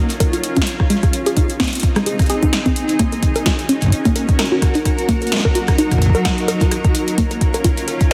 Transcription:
Already playing: C#4 F4 A#4
0.10 closed hi-hat
0.20 A#4, kick, closed hi-hat
0.33 F4, closed hi-hat
0.44 closed hi-hat
0.57 C#4, kick, closed hi-hat
0.62 snare
0.67 closed hi-hat
0.80 kick, cross-stick
0.90 G#3 C4, closed hi-hat
0.97 D#4
1.03 G#4, kick, closed hi-hat
1.13 closed hi-hat
1.26 G#4, closed hi-hat
1.37 D#4, kick, closed hi-hat
1.50 G#4, closed hi-hat
1.60 C4, kick, snare, closed hi-hat
1.62 snare, closed hi-hat
1.65 snare, closed hi-hat
1.68 snare
1.70 snare, closed hi-hat
1.75 closed hi-hat
1.80 closed hi-hat
1.83 kick, closed hi-hat
1.96 G#3, cross-stick, closed hi-hat
2.06 G#4, closed hi-hat
2.19 kick, cross-stick, closed hi-hat
2.22 closed hi-hat
2.26 closed hi-hat
2.30 G#4, closed hi-hat
2.43 D#4, kick, closed hi-hat
2.53 snare, closed hi-hat
2.66 C4, kick, closed hi-hat
2.76 C#4, closed hi-hat
2.89 F#4, closed hi-hat
2.99 A#3, kick, cross-stick, closed hi-hat
3.12 A#4, closed hi-hat
3.23 kick, closed hi-hat
3.36 A#4, closed hi-hat
3.45 F#4 A#4, kick, snare, closed hi-hat
3.59 closed hi-hat
3.69 C#4, closed hi-hat
3.82 kick, closed hi-hat
3.84 kick
3.86 kick
3.88 kick
3.90 kick, closed hi-hat
4.05 A#3, kick, closed hi-hat
4.16 A#4, closed hi-hat
4.29 kick, closed hi-hat
4.39 A#4, snare, closed hi-hat
4.45 closed hi-hat
4.52 F#4
4.62 F#3, kick, cross-stick, closed hi-hat
4.75 D#4, closed hi-hat
4.80 D#4
4.85 kick, cross-stick, closed hi-hat
4.98 closed hi-hat
5.09 A#3, kick, closed hi-hat
5.22 A#4, closed hi-hat
5.27 closed hi-hat
5.32 snare, closed hi-hat
5.36 snare, closed hi-hat
5.40 snare
5.45 A#4, kick
5.55 F#4, closed hi-hat
5.68 kick, cross-stick, closed hi-hat
5.78 D#4, closed hi-hat
5.91 kick, cross-stick, closed hi-hat
5.94 kick
5.98 kick
6.02 kick, closed hi-hat
6.06 kick
6.09 kick
6.15 A#4, closed hi-hat
6.25 F#5, kick, snare, closed hi-hat
6.38 closed hi-hat
6.48 C#4 A#4, closed hi-hat
6.61 F4, kick, closed hi-hat
6.68 F4, cross-stick, closed hi-hat
6.84 A#4, kick, closed hi-hat
6.95 closed hi-hat
7.08 closed hi-hat
7.18 A#3, kick, closed hi-hat
7.31 A#4, closed hi-hat
7.41 kick, closed hi-hat
7.54 A#4, closed hi-hat
7.64 F4, kick, closed hi-hat
7.77 closed hi-hat
7.88 A#4, closed hi-hat
8.01 kick, closed hi-hat

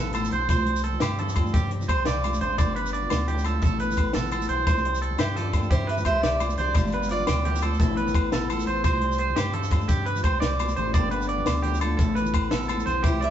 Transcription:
Already playing: A1 G2 A2 B3 C4 A4
0.06 low conga
0.13 A2 A4, closed hi-hat, high conga, low agogo, shekere
0.24 shekere
0.31 B1 C5, closed hi-hat, low conga
0.48 C2 C5, muted nylon-string guitar stroke, kick, closed hi-hat, high conga, low agogo, shekere
0.58 low conga
0.66 G3, closed hi-hat
0.76 shekere
0.83 C4 A4, closed hi-hat
0.93 high conga, low conga
1.00 G2 G4, snare, closed hi-hat, low agogo, shekere
1.18 G3 A4, closed hi-hat, low conga
1.29 shekere
1.36 C4, kick, closed hi-hat, high conga, low agogo
1.46 shekere
1.54 G2 C3 G4, kick, closed hi-hat, low conga, shekere
1.71 G3, closed hi-hat
1.81 high conga, low conga, shekere
1.88 C2 C4 C5, kick, closed hi-hat, low agogo
2.05 C2 G2 D5, snare, closed hi-hat, shekere
2.15 low conga
2.23 G3, closed hi-hat, high conga, low agogo, shekere
2.34 shekere
2.41 A1 C5, muted nylon-string guitar stroke, closed hi-hat, low conga
2.58 G1 G2 D5, kick, closed hi-hat, high conga, low conga, low agogo, shekere
2.67 low conga
2.76 B3 B4, closed hi-hat
2.86 shekere
2.93 D4 D5, closed hi-hat, low conga
3.02 high conga, low conga
3.10 D2 E2, snare, closed hi-hat, low agogo, shekere
3.20 low conga
3.28 F2 G4, closed hi-hat, low conga
3.38 low conga, shekere
3.44 G2 A4, closed hi-hat, high conga, low agogo, shekere
3.62 A1 A2 A4, kick, closed hi-hat, low conga, shekere
3.73 low conga
3.79 B3 B4, closed hi-hat, shekere
3.90 high conga, low conga, shekere
3.97 A1 C4, kick, closed hi-hat, low conga, low agogo
4.13 A1 E2 A4, snare, closed hi-hat, shekere
4.24 low conga, shekere
4.31 B3 A4, closed hi-hat, high conga, low conga, low agogo
4.42 low conga, shekere
4.49 B1 C4 C5, closed hi-hat, low conga
4.67 C2 C3 C5, kick, closed hi-hat, high conga, low agogo, shekere
4.77 low conga, shekere
4.85 G3, closed hi-hat
4.95 shekere
5.02 C4 A4, closed hi-hat
5.11 high conga, low conga
5.18 G2 E4 G4 C5, snare, closed hi-hat, low agogo, shekere
5.36 G3 F4 A4 D5, closed hi-hat, low conga
5.53 C4, kick, snare, closed hi-hat, high conga, low agogo
5.63 shekere
5.70 G2 C3 E4 G4 C5, kick, closed hi-hat, low conga, shekere
5.87 G3 G4 B4 E5, closed hi-hat
5.97 high conga, low conga, shekere
6.05 C2 G4 C5 E5, kick, closed hi-hat, low agogo
6.23 C2 G2 D5, snare, closed hi-hat, shekere
6.32 low conga
6.40 G3, closed hi-hat, high conga, low agogo, shekere
6.50 shekere
6.57 C2 C4 G4 C5 D5, closed hi-hat, low conga
6.74 G1 G2, muted clean electric guitar stroke, kick, closed hi-hat, high conga, low agogo, shekere
6.85 low conga, shekere
6.92 B3 B4, closed hi-hat
7.03 shekere
7.09 F4 D5, closed hi-hat
7.20 high conga, low conga
7.27 D2 E2 B4 G5, snare, closed hi-hat, low agogo, shekere
7.44 F2 G4, closed hi-hat, low conga
7.55 shekere
7.62 A4, muted nylon-string guitar stroke, closed hi-hat, high conga, low agogo
7.74 shekere
7.80 A1 A2 E3 B3 C4 E4 A4, kick, closed hi-hat, low conga, shekere
7.97 B3 B4, closed hi-hat
8.07 high conga, low conga, shekere
8.14 A1 C4, kick, closed hi-hat, low agogo
8.32 A1 E2 A4, snare, closed hi-hat, shekere
8.41 low conga
8.50 B3 A4, closed hi-hat, high conga, low agogo, shekere
8.59 shekere
8.66 A1 C5, muted nylon-string guitar stroke, closed hi-hat
8.83 C2 C3 C5, kick, closed hi-hat, high conga, low agogo, shekere
8.93 low conga
9.01 G3, closed hi-hat
9.12 shekere
9.18 C4 C5, closed hi-hat
9.28 high conga, low conga
9.36 G2 G4, snare, closed hi-hat, low agogo, shekere
9.53 G3 A4, closed hi-hat, low conga
9.63 shekere
9.70 C4, kick, snare, closed hi-hat, high conga, low agogo
9.81 shekere
9.88 G2 C3 G4, kick, closed hi-hat, low conga, shekere
10.06 G3 B4, closed hi-hat
10.16 high conga, low conga, shekere
10.24 C2 C4 C5, kick, closed hi-hat, low agogo
10.40 C2 C3 D5, snare, closed hi-hat, shekere
10.51 low conga
10.59 B2, closed hi-hat, high conga, low agogo, shekere
10.68 shekere
10.76 A1 A2 C5, closed hi-hat, low conga
10.94 G1 G2 D3 B3 D4 G4 D5, kick, closed hi-hat, high conga, low conga, low agogo, shekere
11.03 low conga
11.11 B3 B4, closed hi-hat
11.21 shekere
11.29 D4 D5, closed hi-hat
11.38 high conga, low conga
11.46 D2 E2, snare, closed hi-hat, low agogo, shekere
11.56 low conga
11.63 F2 G4, closed hi-hat, low conga, shekere
11.74 shekere
11.81 G2 A4, closed hi-hat, high conga, low agogo
11.97 A1 A2 A4, kick, closed hi-hat, low conga, shekere
12.15 B3 B4, closed hi-hat, shekere
12.25 high conga, low conga, shekere
12.33 A1 C4, kick, closed hi-hat, low agogo
12.43 low conga
12.51 A1 E2 A4, snare, closed hi-hat, low conga, shekere
12.61 low conga, shekere
12.68 B3 A4, closed hi-hat, high conga, low conga, low agogo, shekere
12.80 shekere
12.86 B1 C4 C5, closed hi-hat, low conga, shekere
12.95 low conga
13.03 C2 C3 E3 G3 C4 E4 G4 C5, kick, closed hi-hat, high conga, low agogo, shekere
13.07 E4
13.13 low conga
13.21 C4 G4 D5 E5, closed hi-hat

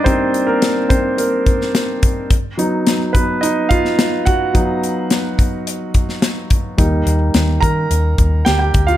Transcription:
Already playing: G3 A#3 D4 D#4 G4 D5 D#5 G5
0.04 G3 A#3 C4 D#4 C5, kick, closed hi-hat
0.34 closed hi-hat
0.47 A#3 A#4
0.62 snare, closed hi-hat
0.89 C4 C5, kick, closed hi-hat
1.18 A#3 A#4, closed hi-hat
1.46 kick, closed hi-hat
1.61 snare
1.75 snare, closed hi-hat
2.03 kick, closed hi-hat
2.30 kick, closed hi-hat
2.57 F#3 B3 D#4, closed hi-hat
2.87 snare, closed hi-hat
3.13 B3 B4, kick, closed hi-hat
3.41 D#4 D#5, closed hi-hat
3.69 F4 F5, kick, closed hi-hat
3.85 snare
3.99 snare, closed hi-hat
4.25 F#4 F#5, kick, closed hi-hat
4.54 F#3 B3 D#4, kick, closed hi-hat
4.83 closed hi-hat
5.10 snare, closed hi-hat
5.39 kick, closed hi-hat
5.67 closed hi-hat
5.94 kick, closed hi-hat
6.09 snare
6.22 snare, closed hi-hat
6.50 kick, closed hi-hat
6.78 D#2 G3 A#3 D#4, kick, closed hi-hat
7.06 D#2, closed hi-hat
7.34 D#2, snare, closed hi-hat
7.61 D#3 A#4 A#5, kick, closed hi-hat
7.90 D#2, closed hi-hat
8.18 D#2, kick, closed hi-hat
8.45 D2 G4 G5, snare, closed hi-hat
8.59 G4 G5
8.74 D2, kick, closed hi-hat
8.87 F4 F5, closed hi-hat

